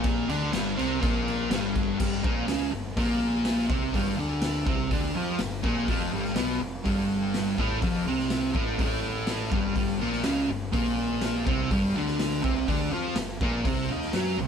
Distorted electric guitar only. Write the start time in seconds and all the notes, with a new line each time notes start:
Already playing: A#2 A#3
0.29 D3 D4
0.52 G2 G3
0.77 C3 C4
1.00 A#2 A#3
1.51 G2 G3
1.99 G2 G3
2.24 A#2 A#3
2.47 C#3 C#4
2.70 G2
2.97 A#2 A#3
3.69 C3 C4
3.94 G2 G3
4.17 D3 D4
4.66 C3 C4
4.92 D3 D4
5.15 F3 F4
5.40 G2
5.63 A#2 A#3
5.88 F2 F3
6.12 G2 G3
6.35 B2 B3
6.61 F2
6.85 G2 G3
7.58 A2 A3
7.81 F2 F3
8.07 C3 C4
8.54 A2 A3
8.79 A2 A3
9.50 G2 G3
9.75 G2 G3
9.99 A#2 A#3
10.25 C#3 C#4
10.49 G2
10.72 A#2 A#3
11.46 C3 C4
11.71 G2 G3
11.96 D3 D4
12.43 C3 C4
12.68 D3 D4
12.92 F3 F4
13.18 G2
13.41 A#2 A#3
13.66 C3 C4
13.91 D#3 D#4
14.14 F#3 F#4
14.39 C3